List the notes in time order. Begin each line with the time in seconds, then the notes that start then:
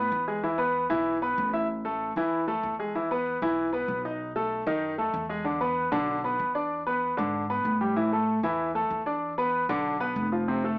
Already playing: B3 B4
0.12 E2
0.28 G#3 G#4
0.43 E3 E4
0.58 B3 B4
0.90 B1 E3 E4
1.22 B3 B4
1.38 A1
1.53 E4 E5
1.85 A3 A4
2.16 E2 E3 E4
2.47 A3 A4
2.63 E2
2.79 G#3 G#4
2.95 E3 E4
3.11 B3 B4
3.42 B1 E3 E4
3.73 B3 B4
3.88 B1
4.05 D#4 D#5
4.36 A3 A4
4.67 F#2 D#3 D#4
4.98 A3 A4
5.14 E2
5.29 G#3 G#4
5.45 D3 D4
5.61 B3 B4
5.92 B1 D3 D4
6.24 B3 B4
6.39 E2
6.55 D4 D5
6.87 B3 B4
7.17 G#2 D3 D4
7.50 B3 B4
7.65 A2
7.81 G3 G4
7.96 E3 E4
8.13 A3 A4
8.43 E2 E3 E4
8.75 A3 A4
8.90 E2
9.06 D4 D5
9.38 B3 B4
9.69 B1 D3 D4
10.00 B3 B4
10.16 F1
10.32 F3 F4
10.48 C3 C4
10.64 A3 A4